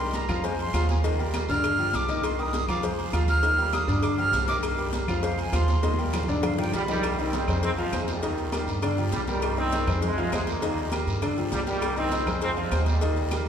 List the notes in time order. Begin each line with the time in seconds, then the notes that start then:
Already playing: C2 C6
0.00 G3 G4 A#4
0.14 A#5, cowbell, high conga, low agogo, short guiro, maracas
0.28 F2 F3 F4 F5, high conga, low conga, low agogo, short guiro, claves, maracas
0.44 G#3 G#4 C5 G#5, cowbell, high conga, long guiro, maracas
0.59 C6, high conga, low agogo, maracas
0.73 D#2 F3 F4 F5, cowbell, high conga, low timbale, low agogo, short guiro, claves, maracas
0.89 G#5, cowbell, high conga, short guiro, maracas
1.04 D#3 D#4 D#5, cowbell, high conga, low agogo, long guiro, maracas
1.19 G3 G4 A#4, high conga, maracas
1.34 cowbell, high conga, low agogo, short guiro, claves, maracas
1.49 G2 D3 D4 D5 F6, short guiro, maracas
1.64 cowbell, high conga, low agogo, long guiro, claves, maracas
1.79 F3 F4 G4, high conga, maracas
1.93 C2 D6, cowbell, high conga, low agogo, short guiro, maracas
2.08 D#3 D#4 D#5, cowbell, high conga, short guiro, maracas
2.23 C6, cowbell, high conga, low agogo, long guiro, claves, maracas
2.38 G3 G4 A#4 D#6, high conga, maracas
2.53 cowbell, high conga, low agogo, short guiro, maracas
2.68 F2 F3 F4 F5 D6, high conga, low conga, low agogo, short guiro, claves, maracas
2.83 G#3 G#4 C5, cowbell, high conga, low conga, long guiro, maracas
2.98 high conga, low agogo, maracas
3.13 D#2 F3 F4 F5, cowbell, high conga, low agogo, short guiro, claves, maracas
3.28 F6, cowbell, high conga, short guiro, maracas
3.43 D#3 D#4 D#5, cowbell, high conga, low agogo, long guiro, maracas
3.58 G3 G4 A#4, high conga, maracas
3.73 D#6, cowbell, high conga, low agogo, short guiro, claves, maracas
3.88 G2 D3 D4 D5, short guiro, maracas
4.03 D6, cowbell, high conga, low agogo, long guiro, claves, maracas
4.17 F3 F4 G4 F6, high conga, maracas
4.33 C2, cowbell, high conga, low timbale, low agogo, short guiro, maracas
4.48 D#3 D#4 D#5 D6, cowbell, high conga, short guiro, maracas
4.63 cowbell, high conga, low agogo, long guiro, claves, maracas
4.78 G3 G4 A#4, high conga, maracas
4.93 cowbell, high conga, low agogo, short guiro, maracas
5.08 F2 F3 F4 F5, high conga, low conga, low agogo, short guiro, claves, maracas
5.22 G#3 G#4 C5 F5, cowbell, high conga, long guiro, maracas
5.38 G#5, high conga, low agogo, maracas
5.52 D#2 F3 F4 F5 C6, cowbell, high conga, low agogo, short guiro, claves, maracas
5.68 cowbell, high conga, short guiro, maracas
5.83 D#3 D#4 D#5, cowbell, high conga, low agogo, long guiro, maracas
5.94 high conga
5.98 G3 G4 A#4, maracas
6.13 cowbell, low conga, low agogo, short guiro, claves, maracas
6.23 low conga
6.28 G2 D3 D4 D5, short guiro, maracas
6.43 F5, cowbell, high bongo, low conga, low agogo, long guiro, claves, maracas
6.54 low conga
6.58 F3 F4 G4 G5, high bongo, maracas
6.63 low conga
6.72 C2 G3 B5, cowbell, low conga, low agogo, short guiro, maracas
6.88 A#2 D#3 G3 D#4 D#5, cowbell, low bongo, short guiro, maracas
6.93 low conga
7.03 cowbell, high conga, low agogo, long guiro, claves, maracas
7.18 D#3 G3 C4 D#4 D#5, high conga, maracas
7.33 D#3 D#4 D#5, cowbell, high conga, low agogo, short guiro, maracas
7.48 F2 G#3 G#4 C5, high conga, low conga, low agogo, short guiro, claves, maracas
7.63 F3 G#3 C4, cowbell, high conga, low conga, long guiro, maracas
7.78 G#2 C3 F3 F4 F5, high conga, low agogo, maracas
7.92 D#2 G#3 G#4 C5, cowbell, high conga, low agogo, short guiro, claves, maracas
8.08 A#2 D#3 G3, cowbell, high conga, short guiro, maracas
8.23 D#3 D#4 D#5, cowbell, high conga, low agogo, long guiro, maracas
8.37 high conga, maracas
8.52 G3 G4 A#4, cowbell, high conga, low agogo, short guiro, claves, maracas
8.67 G2, short guiro, maracas
8.82 D3 D4 D5, cowbell, high conga, low agogo, long guiro, claves, maracas
8.98 F3 F4 G4, high conga, maracas
9.12 C2 G3, cowbell, high conga, low agogo, short guiro, maracas
9.27 A#2 D#3 G3 G4 A#4, cowbell, high conga, short guiro, maracas
9.42 cowbell, high conga, low agogo, long guiro, claves, maracas
9.57 D#3 G3 C4 D#4 D#5, high conga, maracas
9.72 D#3 D#4 D#5, cowbell, high conga, low agogo, short guiro, maracas
9.87 F2 G#3 G#4 C5, high conga, low conga, low agogo, short guiro, claves, maracas
10.02 C3 F3 G#3, cowbell, high conga, low conga, long guiro, maracas
10.17 F3 F4 F5, high conga, low agogo, maracas
10.32 D#2 G#3 G#4 C5, cowbell, high conga, low timbale, low agogo, short guiro, claves, maracas
10.47 D#3 G3 A#3, cowbell, high conga, short guiro, maracas
10.62 D#3 D#4 D#5, cowbell, high conga, low agogo, long guiro, maracas
10.77 high conga, maracas
10.92 G3 G4 A#4, cowbell, high conga, low agogo, short guiro, claves, maracas
11.07 G2, short guiro, maracas
11.22 D3 D4 D5, cowbell, high conga, low agogo, long guiro, claves, maracas
11.37 F3 F4 G4, high conga, maracas
11.52 C2 G3, cowbell, high conga, low timbale, low agogo, short guiro, maracas
11.67 A#2 D#3 G3 G4 A#4, cowbell, high conga, short guiro, maracas
11.82 cowbell, high conga, low agogo, long guiro, claves, maracas
11.97 D#3 G3 C4 D#4 D#5, high conga, maracas
12.12 D#3 D#4 D#5, cowbell, high conga, low agogo, short guiro, maracas
12.27 F2 G#3 G#4 C5, high conga, low conga, low agogo, short guiro, claves, maracas
12.41 F3 G#3 C4, cowbell, high conga, long guiro, maracas
12.57 G#2 C3 F3 F4 F5, high conga, low agogo, maracas
12.71 D#2 G#3 G#4 C5, cowbell, high conga, low timbale, low agogo, short guiro, claves, maracas
12.86 A#2 D#3 G3, cowbell, high conga, short guiro, maracas
13.01 D#3 D#4 D#5, cowbell, high conga, low agogo, long guiro, maracas
13.16 high conga, maracas
13.31 G3 G4 A#4, cowbell, high conga, low agogo, short guiro, claves, maracas